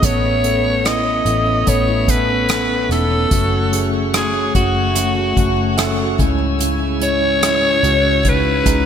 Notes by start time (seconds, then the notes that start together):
Already playing: B2 B3 D#4
0.02 A1 A3 B3 C#4 A4 B4 C#5 B5, kick, closed hi-hat
0.23 E4
0.44 B3 C#4 A4, closed hi-hat
0.64 B4
0.84 B3 C#4 E4 D#5, cross-stick, closed hi-hat
1.06 B4
1.25 A1 B3 C#4 E4 A4, closed hi-hat
1.46 C#4
1.66 A1 A3 B3 C#4 A4 B4 C#5, kick, closed hi-hat
1.88 E4
2.08 B3 C#4 A4 B4, kick, closed hi-hat
2.29 B4
2.49 B3 C#4 E4 A4, cross-stick, closed hi-hat
2.69 B4
2.89 E1 B3 C#4 D#4 E4 A4, cross-stick, closed hi-hat
3.11 C#4
3.31 F#1 F#2 C#3 A3 C#4 F#4 C#5 F#5 C#6, kick, closed hi-hat
3.53 C#4
3.72 A3 C#4 G#4, closed hi-hat
3.93 F#4
4.13 A3 C#4 F#4 G#4, cross-stick, closed hi-hat
4.33 F#4
4.54 F#1 A3 C#4 F#4, kick, closed hi-hat
4.75 A3
4.95 F#2 A3 C#4 F#4, closed hi-hat
5.15 C#4
5.36 F#1 A3 C#4 F#4, kick, closed hi-hat
5.57 F#4
5.77 A3 C#4 A4, cross-stick, closed hi-hat
5.98 F#4
6.18 C#2 G#2 C#3 G#3 C#4 E4 G#5 E6, kick, closed hi-hat
6.38 C#4
6.59 C#3 G#4, closed hi-hat
6.79 E4
7.00 G#3 C#4 E4 C#5, closed hi-hat
7.21 G#4
7.41 G#3 C#4 E4, cross-stick, closed hi-hat
7.62 G#4
7.82 C#2 G#3 C#4 E4 F#4 F#5, closed hi-hat
8.03 C#4
8.23 C#3 G#3 C#4 D#4 G#4, kick, closed hi-hat
8.29 B4
8.44 E4
8.64 C#2 G#3 C#4 D#4, kick, closed hi-hat